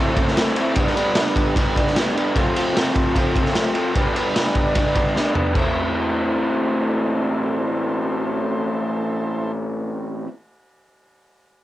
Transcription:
Already playing: overdriven electric guitar A2 E3 A3, transistor combo organ E4 A4 C5
0.00 overdriven electric guitar C4 E4
0.15 overdriven electric guitar C4 E4, kick, ride
0.21 overdriven electric guitar A3
0.28 snare
0.36 overdriven electric guitar E3 A3 C4, snare, ride
0.41 overdriven electric guitar E4
0.56 overdriven electric guitar C4 E4, ride
0.60 overdriven electric guitar A3
0.76 overdriven electric guitar G2 D3 G3, transistor combo organ D4 G4 B4, kick, ride
0.80 overdriven electric guitar B3 D4
0.87 snare
0.96 overdriven electric guitar B3 D4, ride
1.01 overdriven electric guitar G3
1.15 overdriven electric guitar D3 G3, snare, ride
1.20 overdriven electric guitar B3 D4
1.36 kick, ride
1.56 overdriven electric guitar G2 D3 G3 B3, kick, ride
1.60 overdriven electric guitar D4
1.75 overdriven electric guitar B3 D4, kick, ride
1.79 overdriven electric guitar G3
1.87 snare
1.93 overdriven electric guitar D3 G3 B3, snare, ride
1.99 overdriven electric guitar D4
2.14 overdriven electric guitar B3 D4, ride
2.19 overdriven electric guitar G3
2.33 overdriven electric guitar F2 C3 F3, transistor combo organ F4 A4, kick, ride
2.37 overdriven electric guitar A3 C4, transistor combo organ C5
2.54 overdriven electric guitar A3 C4, ride
2.58 overdriven electric guitar F3
2.73 overdriven electric guitar C3 F3 A3, snare, ride
2.78 overdriven electric guitar C4
2.96 kick, ride
3.14 overdriven electric guitar F2 C3 F3 A3, kick, ride
3.18 overdriven electric guitar C4
3.33 overdriven electric guitar A3 C4, kick, ride
3.38 overdriven electric guitar F3
3.45 snare
3.52 overdriven electric guitar C3 F3, snare, ride
3.57 overdriven electric guitar A3 C4
3.73 overdriven electric guitar A3 C4, ride
3.78 overdriven electric guitar F3
3.93 overdriven electric guitar G2 D3 G3 B3, transistor combo organ D4 G4 B4, kick, ride
3.99 overdriven electric guitar D4
4.13 overdriven electric guitar B3 D4, ride
4.18 overdriven electric guitar G3
4.34 overdriven electric guitar D3 G3 B3, snare, ride
4.39 overdriven electric guitar D4
4.55 kick, ride
4.74 overdriven electric guitar G2 D3 G3, kick, ride
4.78 overdriven electric guitar B3 D4
4.94 overdriven electric guitar B3 D4, kick, ride
4.99 overdriven electric guitar G3
5.15 overdriven electric guitar D3 G3 B3, snare
5.20 overdriven electric guitar D4
5.35 overdriven electric guitar B3 D4, floor tom
5.40 overdriven electric guitar G3
5.53 overdriven electric guitar A2 E3 A3 C4, transistor combo organ E4 A4 C5, kick, crash
5.58 overdriven electric guitar E4

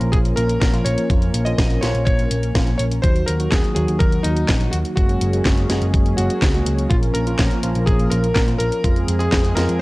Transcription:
Already playing: tine electric piano F3 A#3 C#4 F4, analog synth pad F3 A#3 C#4 A#4, electric grand piano A#4
0.01 picked electric bass A#1, closed hi-hat
0.12 picked electric bass A#1, electric grand piano G#4, kick, closed hi-hat
0.25 closed hi-hat
0.36 picked electric bass A#1, tine electric piano F3 A#3 C#4 F4, electric grand piano A#4, closed hi-hat
0.49 closed hi-hat
0.60 picked electric bass A#2, electric grand piano A#4, kick, snare, closed hi-hat
0.74 tine electric piano F3 A#3 C#4 F4, closed hi-hat
0.85 picked electric bass A#1, electric grand piano C#5, closed hi-hat
0.98 closed hi-hat
1.10 picked electric bass F2, tine electric piano F3 A#3 C#4 F4, kick, closed hi-hat
1.22 closed hi-hat
1.34 picked electric bass A#1, closed hi-hat
1.45 tine electric piano F3 A#3 C#4 F4, electric grand piano D#5, closed hi-hat
1.58 picked electric bass A#1, kick, snare, closed hi-hat
1.70 closed hi-hat
1.81 picked electric bass A#1, tine electric piano F3 A#3 C#4 F4, electric grand piano C#5, snare, closed hi-hat
1.95 picked electric bass A#1, closed hi-hat
2.05 picked electric bass A#1, electric grand piano C#5, kick, closed hi-hat
2.19 closed hi-hat
2.31 picked electric bass A#1, closed hi-hat
2.43 closed hi-hat
2.55 picked electric bass A#1, tine electric piano F3 A#3 C#4 F4, kick, snare, closed hi-hat
2.67 closed hi-hat
2.78 picked electric bass A#1, electric grand piano C#5, closed hi-hat
2.91 closed hi-hat
3.02 picked electric bass D#2, analog synth pad D#3 F#3 F#4, tine electric piano F#3 A#3 D#4 F#4, electric grand piano C5, kick, closed hi-hat
3.16 closed hi-hat
3.26 picked electric bass D#2, electric grand piano A#4, closed hi-hat
3.40 tine electric piano F#3 A#3 D#4 F#4, closed hi-hat
3.50 picked electric bass D#2, electric grand piano G#4, kick, snare, clap, closed hi-hat
3.64 closed hi-hat
3.75 picked electric bass D#2, tine electric piano F#3 A#3 D#4 F#4, electric grand piano G#4, closed hi-hat
3.88 picked electric bass D#2, closed hi-hat
3.99 picked electric bass D#2, electric grand piano A#4, kick, closed hi-hat
4.12 closed hi-hat
4.23 picked electric bass D#2, tine electric piano F#3 A#3 D#4 F#4, electric grand piano D#4, closed hi-hat
4.37 closed hi-hat
4.49 picked electric bass A#1, kick, snare, clap, closed hi-hat
4.61 tine electric piano F#3 A#3 D#4 F#4, closed hi-hat
4.71 picked electric bass D#2, electric grand piano F#4, closed hi-hat
4.85 closed hi-hat
4.96 picked electric bass F#1, tine electric piano G#3 A#3 C#4 F#4, analog synth pad C#4 G#4, electric grand piano F#4, kick, closed hi-hat
5.09 closed hi-hat
5.21 picked electric bass F#1, closed hi-hat
5.33 tine electric piano G#3 A#3 C#4 F#4, closed hi-hat
5.45 picked electric bass F#1, kick, snare, clap, closed hi-hat
5.58 closed hi-hat
5.70 picked electric bass F#1, tine electric piano G#3 A#3 C#4 F#4, snare, closed hi-hat
5.82 picked electric bass F#1, closed hi-hat
5.94 picked electric bass F#1, kick, closed hi-hat
6.06 closed hi-hat
6.17 picked electric bass F#1, tine electric piano G#3 A#3 C#4 F#4, electric grand piano F#4, closed hi-hat
6.30 closed hi-hat
6.42 picked electric bass C#2, kick, snare, clap, closed hi-hat
6.54 tine electric piano G#3 A#3 C#4 F#4, closed hi-hat
6.66 picked electric bass C#2, closed hi-hat
6.79 closed hi-hat
6.90 picked electric bass A#1, analog synth pad F3 A#3 A#4, tine electric piano F3 A#3 C#4 F4, electric grand piano F4, kick, closed hi-hat
7.03 closed hi-hat
7.14 picked electric bass A#1, electric grand piano A#4, closed hi-hat
7.27 tine electric piano F3 A#3 C#4 F4, closed hi-hat
7.39 picked electric bass A#1, kick, snare, clap, closed hi-hat
7.51 closed hi-hat
7.63 picked electric bass A#1, tine electric piano F3 A#3 C#4 F4, closed hi-hat
7.75 picked electric bass A#1, closed hi-hat
7.86 picked electric bass A#1, electric grand piano G#4, kick, closed hi-hat
7.99 closed hi-hat
8.10 picked electric bass A#1, tine electric piano F3 A#3 C#4 F4, electric grand piano A#4, closed hi-hat
8.24 closed hi-hat
8.34 picked electric bass A#2, electric grand piano A#4, kick, snare, clap, closed hi-hat
8.48 tine electric piano F3 A#3 C#4 F4, closed hi-hat
8.58 picked electric bass A#1, electric grand piano A#4, closed hi-hat
8.72 closed hi-hat
8.84 picked electric bass F2, tine electric piano F3 G#3 C4 F4, analog synth pad F3 G#3 C4 G#4, kick, closed hi-hat
8.96 closed hi-hat
9.08 picked electric bass F2, closed hi-hat
9.19 tine electric piano F3 G#3 C4 F4, electric grand piano G#4, closed hi-hat
9.32 picked electric bass F2, kick, snare, clap, closed hi-hat
9.45 closed hi-hat
9.55 picked electric bass F2, tine electric piano F3 G#3 C4 F4, electric grand piano A#4, snare, closed hi-hat
9.69 picked electric bass F2, closed hi-hat

